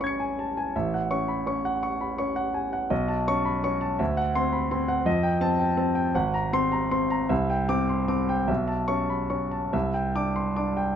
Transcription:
Already playing: A1 E5 G#5 B5
0.00 C#4 C#6 G#6
0.07 C#7
0.20 G#5
0.39 A5
0.57 G#5
0.76 A1 E5
0.94 F#5
1.11 C#4 C#6
1.28 B5
1.47 C#4 C#6
1.65 F#5
1.83 C#6
2.01 B5
2.18 C#4 C#6
2.36 F#5
2.54 G#5
2.73 F#5
2.90 B1 D#5
3.08 A5
3.28 C#4 C#6
3.45 B5
3.64 C#4 C#6
3.81 A5
3.99 D2 E5
4.17 F#5
4.35 C4 C6
4.53 B5
4.71 C4 C6
4.88 F#5
5.06 F2 D#5
5.23 G5
5.41 C4 A5
5.59 G5
5.77 C4 A5
5.95 G5
6.15 G#1 F#5
6.34 A#5
6.53 C4 C6
6.72 A#5
6.91 C4 C6
7.10 A#5
7.29 C2 E5
7.50 G5
7.69 C4 D6
7.89 C6
8.08 C4 D6
8.29 G5
8.48 B1 E5
8.68 A5
8.88 C#4 C#6
9.10 B5
9.30 C#4 C#6
9.51 A5
9.73 C2 E5
9.94 G5
10.15 D4 D6
10.36 C6
10.56 D4 D6
10.77 G5

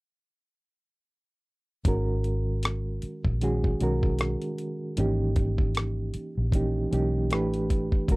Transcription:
1.85 G#1 D#3 G#3 C#4 F#4 A#4, kick, closed hi-hat
2.24 closed hi-hat
2.63 cross-stick, closed hi-hat
3.02 muted fingered electric bass stroke, closed hi-hat
3.25 A#1, kick
3.41 D#3 G#3 C#4 F#4 G#4, closed hi-hat
3.64 kick
3.80 B1 D#3 G#3 C#4 F#4 A#4, closed hi-hat
4.03 kick
4.19 cross-stick, closed hi-hat
4.42 closed hi-hat
4.58 closed hi-hat
4.97 G#1 E3 A#3 C#4 D#4 G4, closed hi-hat
5.36 kick, closed hi-hat
5.58 kick
5.75 cross-stick, closed hi-hat
6.14 muted fingered electric bass stroke, closed hi-hat
6.37 A#1
6.52 E3 A#3 C#4 D#4 G4, kick, closed hi-hat
6.91 B1 E3 A#3 C#4 D#4 G4, closed hi-hat
7.31 A1 E3 A3 D4 G4 B4, cross-stick, closed hi-hat
7.54 closed hi-hat
7.70 kick, closed hi-hat
7.92 kick
8.08 G#1 D#3 G#3 C#4 F#4 A#4, kick, closed hi-hat

